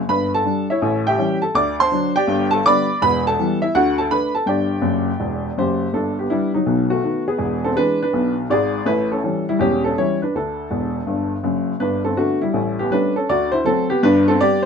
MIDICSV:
0, 0, Header, 1, 2, 480
1, 0, Start_track
1, 0, Key_signature, 1, "major"
1, 0, Tempo, 366300
1, 119, Time_signature, 4, 2, 24, 8
1, 19204, End_track
2, 0, Start_track
2, 0, Title_t, "Upright piano"
2, 0, Program_c, 0, 0
2, 114, Note_on_c, 0, 43, 61
2, 116, Note_on_c, 0, 31, 49
2, 119, Note_on_c, 0, 83, 91
2, 130, Note_on_c, 0, 71, 68
2, 381, Note_off_c, 0, 83, 0
2, 411, Note_off_c, 0, 71, 0
2, 452, Note_on_c, 0, 81, 86
2, 454, Note_on_c, 0, 69, 60
2, 523, Note_off_c, 0, 43, 0
2, 524, Note_off_c, 0, 31, 0
2, 592, Note_on_c, 0, 55, 38
2, 603, Note_on_c, 0, 62, 43
2, 848, Note_off_c, 0, 81, 0
2, 857, Note_off_c, 0, 55, 0
2, 864, Note_off_c, 0, 62, 0
2, 887, Note_off_c, 0, 69, 0
2, 919, Note_on_c, 0, 76, 67
2, 934, Note_on_c, 0, 64, 60
2, 940, Note_on_c, 0, 73, 57
2, 1071, Note_on_c, 0, 33, 68
2, 1078, Note_on_c, 0, 45, 68
2, 1320, Note_off_c, 0, 76, 0
2, 1366, Note_off_c, 0, 64, 0
2, 1369, Note_off_c, 0, 73, 0
2, 1399, Note_on_c, 0, 79, 85
2, 1412, Note_on_c, 0, 76, 58
2, 1419, Note_on_c, 0, 67, 65
2, 1480, Note_off_c, 0, 33, 0
2, 1484, Note_off_c, 0, 45, 0
2, 1548, Note_on_c, 0, 55, 48
2, 1551, Note_on_c, 0, 52, 42
2, 1560, Note_on_c, 0, 61, 49
2, 1799, Note_off_c, 0, 79, 0
2, 1813, Note_off_c, 0, 55, 0
2, 1816, Note_off_c, 0, 52, 0
2, 1822, Note_off_c, 0, 61, 0
2, 1844, Note_off_c, 0, 76, 0
2, 1848, Note_off_c, 0, 67, 0
2, 1858, Note_on_c, 0, 81, 73
2, 1872, Note_on_c, 0, 69, 59
2, 2005, Note_off_c, 0, 81, 0
2, 2026, Note_on_c, 0, 38, 75
2, 2027, Note_off_c, 0, 69, 0
2, 2028, Note_on_c, 0, 50, 58
2, 2035, Note_on_c, 0, 86, 94
2, 2051, Note_on_c, 0, 74, 67
2, 2296, Note_off_c, 0, 86, 0
2, 2330, Note_off_c, 0, 74, 0
2, 2360, Note_on_c, 0, 84, 96
2, 2376, Note_on_c, 0, 72, 66
2, 2382, Note_on_c, 0, 81, 68
2, 2436, Note_off_c, 0, 38, 0
2, 2437, Note_off_c, 0, 50, 0
2, 2513, Note_on_c, 0, 54, 48
2, 2515, Note_on_c, 0, 50, 47
2, 2525, Note_on_c, 0, 62, 58
2, 2759, Note_off_c, 0, 84, 0
2, 2776, Note_off_c, 0, 54, 0
2, 2778, Note_off_c, 0, 50, 0
2, 2784, Note_off_c, 0, 62, 0
2, 2805, Note_off_c, 0, 72, 0
2, 2808, Note_off_c, 0, 81, 0
2, 2827, Note_on_c, 0, 79, 94
2, 2842, Note_on_c, 0, 74, 71
2, 2847, Note_on_c, 0, 67, 73
2, 2980, Note_on_c, 0, 31, 78
2, 2983, Note_on_c, 0, 43, 82
2, 3231, Note_off_c, 0, 79, 0
2, 3277, Note_off_c, 0, 74, 0
2, 3280, Note_off_c, 0, 67, 0
2, 3286, Note_on_c, 0, 81, 103
2, 3314, Note_on_c, 0, 69, 78
2, 3391, Note_off_c, 0, 31, 0
2, 3393, Note_off_c, 0, 43, 0
2, 3436, Note_off_c, 0, 81, 0
2, 3465, Note_off_c, 0, 69, 0
2, 3480, Note_on_c, 0, 50, 54
2, 3483, Note_on_c, 0, 86, 118
2, 3486, Note_on_c, 0, 55, 50
2, 3487, Note_on_c, 0, 59, 62
2, 3504, Note_on_c, 0, 83, 85
2, 3506, Note_on_c, 0, 74, 91
2, 3740, Note_off_c, 0, 50, 0
2, 3745, Note_off_c, 0, 55, 0
2, 3745, Note_off_c, 0, 59, 0
2, 3884, Note_off_c, 0, 86, 0
2, 3933, Note_off_c, 0, 83, 0
2, 3934, Note_off_c, 0, 74, 0
2, 3953, Note_on_c, 0, 40, 75
2, 3961, Note_on_c, 0, 83, 113
2, 3964, Note_on_c, 0, 28, 65
2, 3981, Note_on_c, 0, 71, 74
2, 4217, Note_off_c, 0, 83, 0
2, 4252, Note_off_c, 0, 71, 0
2, 4286, Note_on_c, 0, 81, 99
2, 4288, Note_on_c, 0, 69, 75
2, 4358, Note_off_c, 0, 40, 0
2, 4364, Note_off_c, 0, 28, 0
2, 4444, Note_on_c, 0, 52, 51
2, 4449, Note_on_c, 0, 59, 53
2, 4455, Note_on_c, 0, 55, 52
2, 4680, Note_off_c, 0, 81, 0
2, 4702, Note_off_c, 0, 52, 0
2, 4706, Note_off_c, 0, 59, 0
2, 4710, Note_off_c, 0, 55, 0
2, 4718, Note_off_c, 0, 69, 0
2, 4742, Note_on_c, 0, 76, 84
2, 4763, Note_on_c, 0, 64, 69
2, 4883, Note_off_c, 0, 76, 0
2, 4909, Note_off_c, 0, 64, 0
2, 4912, Note_on_c, 0, 38, 83
2, 4913, Note_on_c, 0, 50, 67
2, 4913, Note_on_c, 0, 78, 94
2, 4932, Note_on_c, 0, 66, 73
2, 5172, Note_off_c, 0, 78, 0
2, 5206, Note_off_c, 0, 66, 0
2, 5219, Note_on_c, 0, 81, 80
2, 5235, Note_on_c, 0, 69, 68
2, 5316, Note_off_c, 0, 38, 0
2, 5317, Note_off_c, 0, 50, 0
2, 5361, Note_off_c, 0, 81, 0
2, 5379, Note_on_c, 0, 57, 46
2, 5379, Note_on_c, 0, 62, 51
2, 5383, Note_off_c, 0, 69, 0
2, 5387, Note_on_c, 0, 83, 93
2, 5396, Note_on_c, 0, 71, 75
2, 5644, Note_off_c, 0, 57, 0
2, 5644, Note_off_c, 0, 62, 0
2, 5647, Note_off_c, 0, 83, 0
2, 5677, Note_off_c, 0, 71, 0
2, 5695, Note_on_c, 0, 81, 72
2, 5710, Note_on_c, 0, 69, 54
2, 5839, Note_off_c, 0, 81, 0
2, 5846, Note_on_c, 0, 43, 54
2, 5853, Note_on_c, 0, 31, 51
2, 5856, Note_on_c, 0, 79, 70
2, 5860, Note_off_c, 0, 69, 0
2, 5876, Note_on_c, 0, 67, 54
2, 5880, Note_on_c, 0, 74, 55
2, 6260, Note_off_c, 0, 43, 0
2, 6264, Note_off_c, 0, 31, 0
2, 6310, Note_on_c, 0, 30, 55
2, 6313, Note_on_c, 0, 42, 57
2, 6681, Note_off_c, 0, 30, 0
2, 6683, Note_off_c, 0, 42, 0
2, 6810, Note_on_c, 0, 28, 53
2, 6815, Note_on_c, 0, 40, 54
2, 7174, Note_off_c, 0, 28, 0
2, 7177, Note_off_c, 0, 40, 0
2, 7307, Note_on_c, 0, 30, 56
2, 7307, Note_on_c, 0, 42, 53
2, 7313, Note_off_c, 0, 67, 0
2, 7319, Note_on_c, 0, 72, 72
2, 7333, Note_on_c, 0, 67, 54
2, 7344, Note_off_c, 0, 79, 0
2, 7565, Note_off_c, 0, 74, 0
2, 7664, Note_off_c, 0, 42, 0
2, 7665, Note_off_c, 0, 30, 0
2, 7719, Note_off_c, 0, 72, 0
2, 7764, Note_off_c, 0, 67, 0
2, 7770, Note_on_c, 0, 31, 48
2, 7774, Note_on_c, 0, 43, 46
2, 7782, Note_on_c, 0, 69, 68
2, 7795, Note_on_c, 0, 62, 55
2, 8044, Note_off_c, 0, 69, 0
2, 8075, Note_off_c, 0, 62, 0
2, 8112, Note_on_c, 0, 67, 52
2, 8130, Note_on_c, 0, 59, 39
2, 8182, Note_off_c, 0, 31, 0
2, 8185, Note_off_c, 0, 43, 0
2, 8235, Note_off_c, 0, 59, 0
2, 8247, Note_off_c, 0, 67, 0
2, 8255, Note_on_c, 0, 59, 36
2, 8257, Note_on_c, 0, 64, 69
2, 8268, Note_on_c, 0, 62, 45
2, 8283, Note_on_c, 0, 55, 57
2, 8521, Note_off_c, 0, 59, 0
2, 8521, Note_off_c, 0, 64, 0
2, 8530, Note_off_c, 0, 62, 0
2, 8560, Note_off_c, 0, 55, 0
2, 8575, Note_on_c, 0, 63, 59
2, 8590, Note_on_c, 0, 54, 43
2, 8727, Note_on_c, 0, 47, 58
2, 8733, Note_on_c, 0, 35, 53
2, 8981, Note_off_c, 0, 63, 0
2, 9027, Note_off_c, 0, 54, 0
2, 9045, Note_on_c, 0, 66, 70
2, 9062, Note_on_c, 0, 57, 50
2, 9141, Note_off_c, 0, 47, 0
2, 9144, Note_off_c, 0, 35, 0
2, 9202, Note_off_c, 0, 57, 0
2, 9222, Note_on_c, 0, 51, 35
2, 9222, Note_on_c, 0, 57, 38
2, 9229, Note_on_c, 0, 59, 39
2, 9455, Note_off_c, 0, 66, 0
2, 9486, Note_off_c, 0, 51, 0
2, 9486, Note_off_c, 0, 57, 0
2, 9491, Note_off_c, 0, 59, 0
2, 9536, Note_on_c, 0, 68, 62
2, 9538, Note_on_c, 0, 59, 54
2, 9675, Note_on_c, 0, 28, 55
2, 9675, Note_on_c, 0, 40, 56
2, 9942, Note_off_c, 0, 68, 0
2, 9982, Note_off_c, 0, 59, 0
2, 10017, Note_on_c, 0, 69, 73
2, 10036, Note_on_c, 0, 60, 58
2, 10095, Note_off_c, 0, 28, 0
2, 10095, Note_off_c, 0, 40, 0
2, 10160, Note_off_c, 0, 69, 0
2, 10161, Note_on_c, 0, 52, 37
2, 10168, Note_on_c, 0, 56, 46
2, 10178, Note_on_c, 0, 71, 96
2, 10184, Note_off_c, 0, 60, 0
2, 10192, Note_on_c, 0, 62, 65
2, 10431, Note_off_c, 0, 52, 0
2, 10437, Note_off_c, 0, 56, 0
2, 10443, Note_off_c, 0, 71, 0
2, 10476, Note_off_c, 0, 62, 0
2, 10516, Note_on_c, 0, 71, 77
2, 10525, Note_on_c, 0, 62, 57
2, 10658, Note_on_c, 0, 47, 53
2, 10659, Note_on_c, 0, 35, 61
2, 10914, Note_off_c, 0, 71, 0
2, 10957, Note_off_c, 0, 62, 0
2, 11069, Note_off_c, 0, 47, 0
2, 11070, Note_off_c, 0, 35, 0
2, 11135, Note_on_c, 0, 32, 62
2, 11138, Note_on_c, 0, 44, 62
2, 11147, Note_on_c, 0, 74, 89
2, 11169, Note_on_c, 0, 68, 69
2, 11524, Note_off_c, 0, 32, 0
2, 11525, Note_off_c, 0, 44, 0
2, 11555, Note_off_c, 0, 74, 0
2, 11603, Note_on_c, 0, 33, 57
2, 11604, Note_on_c, 0, 45, 68
2, 11605, Note_off_c, 0, 68, 0
2, 11614, Note_on_c, 0, 71, 90
2, 11629, Note_on_c, 0, 64, 64
2, 11882, Note_off_c, 0, 71, 0
2, 11915, Note_off_c, 0, 64, 0
2, 11948, Note_on_c, 0, 69, 64
2, 11966, Note_on_c, 0, 61, 48
2, 12022, Note_off_c, 0, 33, 0
2, 12022, Note_off_c, 0, 45, 0
2, 12100, Note_off_c, 0, 61, 0
2, 12105, Note_on_c, 0, 52, 41
2, 12106, Note_on_c, 0, 55, 40
2, 12119, Note_on_c, 0, 61, 40
2, 12352, Note_off_c, 0, 69, 0
2, 12370, Note_off_c, 0, 52, 0
2, 12371, Note_off_c, 0, 55, 0
2, 12380, Note_off_c, 0, 61, 0
2, 12436, Note_on_c, 0, 64, 74
2, 12447, Note_on_c, 0, 55, 58
2, 12568, Note_on_c, 0, 28, 51
2, 12569, Note_on_c, 0, 40, 59
2, 12573, Note_off_c, 0, 64, 0
2, 12587, Note_on_c, 0, 67, 85
2, 12592, Note_off_c, 0, 55, 0
2, 12596, Note_on_c, 0, 61, 67
2, 12850, Note_off_c, 0, 67, 0
2, 12880, Note_off_c, 0, 61, 0
2, 12900, Note_on_c, 0, 69, 73
2, 12924, Note_on_c, 0, 61, 53
2, 12985, Note_off_c, 0, 28, 0
2, 12986, Note_off_c, 0, 40, 0
2, 13044, Note_off_c, 0, 69, 0
2, 13062, Note_off_c, 0, 61, 0
2, 13080, Note_on_c, 0, 73, 81
2, 13081, Note_on_c, 0, 61, 41
2, 13084, Note_on_c, 0, 52, 35
2, 13084, Note_on_c, 0, 55, 39
2, 13106, Note_on_c, 0, 64, 58
2, 13338, Note_off_c, 0, 73, 0
2, 13343, Note_off_c, 0, 61, 0
2, 13344, Note_off_c, 0, 52, 0
2, 13345, Note_off_c, 0, 55, 0
2, 13377, Note_off_c, 0, 64, 0
2, 13394, Note_on_c, 0, 71, 59
2, 13408, Note_on_c, 0, 62, 48
2, 13533, Note_off_c, 0, 71, 0
2, 13554, Note_off_c, 0, 62, 0
2, 13566, Note_on_c, 0, 38, 51
2, 13568, Note_on_c, 0, 50, 47
2, 13574, Note_on_c, 0, 69, 67
2, 13588, Note_on_c, 0, 62, 46
2, 13968, Note_off_c, 0, 38, 0
2, 13969, Note_off_c, 0, 50, 0
2, 14029, Note_on_c, 0, 28, 49
2, 14030, Note_on_c, 0, 40, 52
2, 14390, Note_off_c, 0, 28, 0
2, 14391, Note_off_c, 0, 40, 0
2, 14502, Note_on_c, 0, 43, 52
2, 14504, Note_on_c, 0, 31, 53
2, 14791, Note_off_c, 0, 69, 0
2, 14867, Note_off_c, 0, 43, 0
2, 14868, Note_off_c, 0, 31, 0
2, 14960, Note_off_c, 0, 62, 0
2, 14978, Note_on_c, 0, 30, 51
2, 14988, Note_on_c, 0, 42, 57
2, 15345, Note_off_c, 0, 30, 0
2, 15351, Note_off_c, 0, 42, 0
2, 15460, Note_on_c, 0, 43, 51
2, 15462, Note_on_c, 0, 31, 52
2, 15464, Note_on_c, 0, 71, 72
2, 15480, Note_on_c, 0, 62, 56
2, 15732, Note_off_c, 0, 71, 0
2, 15766, Note_off_c, 0, 62, 0
2, 15784, Note_on_c, 0, 69, 66
2, 15804, Note_on_c, 0, 60, 45
2, 15875, Note_off_c, 0, 43, 0
2, 15877, Note_off_c, 0, 31, 0
2, 15930, Note_off_c, 0, 69, 0
2, 15943, Note_on_c, 0, 50, 38
2, 15944, Note_on_c, 0, 59, 38
2, 15952, Note_on_c, 0, 66, 70
2, 15955, Note_off_c, 0, 60, 0
2, 15956, Note_on_c, 0, 62, 37
2, 15970, Note_on_c, 0, 57, 57
2, 16211, Note_off_c, 0, 50, 0
2, 16212, Note_off_c, 0, 59, 0
2, 16217, Note_off_c, 0, 66, 0
2, 16220, Note_off_c, 0, 62, 0
2, 16251, Note_off_c, 0, 57, 0
2, 16271, Note_on_c, 0, 64, 67
2, 16287, Note_on_c, 0, 55, 48
2, 16426, Note_on_c, 0, 33, 55
2, 16429, Note_on_c, 0, 45, 58
2, 16678, Note_off_c, 0, 64, 0
2, 16725, Note_off_c, 0, 55, 0
2, 16763, Note_on_c, 0, 67, 69
2, 16774, Note_on_c, 0, 59, 57
2, 16840, Note_off_c, 0, 33, 0
2, 16841, Note_off_c, 0, 45, 0
2, 16902, Note_off_c, 0, 67, 0
2, 16913, Note_on_c, 0, 55, 44
2, 16921, Note_off_c, 0, 59, 0
2, 16928, Note_on_c, 0, 71, 80
2, 16929, Note_on_c, 0, 57, 37
2, 16929, Note_on_c, 0, 61, 46
2, 16950, Note_on_c, 0, 62, 61
2, 17179, Note_off_c, 0, 55, 0
2, 17187, Note_off_c, 0, 71, 0
2, 17191, Note_off_c, 0, 57, 0
2, 17191, Note_off_c, 0, 61, 0
2, 17224, Note_off_c, 0, 62, 0
2, 17246, Note_on_c, 0, 69, 73
2, 17269, Note_on_c, 0, 61, 53
2, 17384, Note_off_c, 0, 69, 0
2, 17409, Note_off_c, 0, 61, 0
2, 17421, Note_on_c, 0, 38, 61
2, 17421, Note_on_c, 0, 74, 89
2, 17423, Note_on_c, 0, 50, 62
2, 17445, Note_on_c, 0, 66, 64
2, 17675, Note_off_c, 0, 74, 0
2, 17712, Note_off_c, 0, 66, 0
2, 17712, Note_on_c, 0, 72, 84
2, 17733, Note_on_c, 0, 64, 66
2, 17821, Note_off_c, 0, 38, 0
2, 17822, Note_off_c, 0, 50, 0
2, 17857, Note_off_c, 0, 72, 0
2, 17882, Note_off_c, 0, 64, 0
2, 17882, Note_on_c, 0, 54, 46
2, 17893, Note_on_c, 0, 57, 42
2, 17895, Note_on_c, 0, 69, 88
2, 17911, Note_on_c, 0, 60, 66
2, 18146, Note_off_c, 0, 54, 0
2, 18152, Note_off_c, 0, 69, 0
2, 18154, Note_off_c, 0, 57, 0
2, 18185, Note_off_c, 0, 60, 0
2, 18212, Note_on_c, 0, 67, 85
2, 18222, Note_on_c, 0, 59, 63
2, 18349, Note_off_c, 0, 67, 0
2, 18367, Note_off_c, 0, 59, 0
2, 18383, Note_on_c, 0, 43, 81
2, 18387, Note_on_c, 0, 31, 63
2, 18389, Note_on_c, 0, 71, 101
2, 18416, Note_on_c, 0, 62, 76
2, 18641, Note_off_c, 0, 71, 0
2, 18679, Note_off_c, 0, 62, 0
2, 18711, Note_on_c, 0, 69, 89
2, 18735, Note_on_c, 0, 60, 71
2, 18783, Note_off_c, 0, 43, 0
2, 18785, Note_off_c, 0, 31, 0
2, 18840, Note_off_c, 0, 69, 0
2, 18865, Note_off_c, 0, 60, 0
2, 18874, Note_on_c, 0, 55, 42
2, 18878, Note_on_c, 0, 74, 106
2, 18881, Note_on_c, 0, 59, 49
2, 18896, Note_on_c, 0, 67, 81
2, 19126, Note_off_c, 0, 74, 0
2, 19130, Note_off_c, 0, 55, 0
2, 19135, Note_off_c, 0, 59, 0
2, 19159, Note_off_c, 0, 67, 0
2, 19204, End_track
0, 0, End_of_file